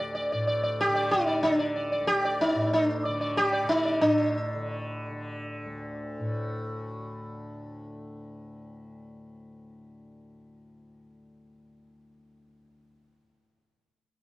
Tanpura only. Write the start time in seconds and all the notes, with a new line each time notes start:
Already playing: D2 A2 D3
0.34 A2
0.88 D3
1.45 D3
2.00 D2
2.55 A2
3.09 D3
3.64 D3
4.01 A2
4.55 D3
5.11 D3
5.66 D2
6.20 A2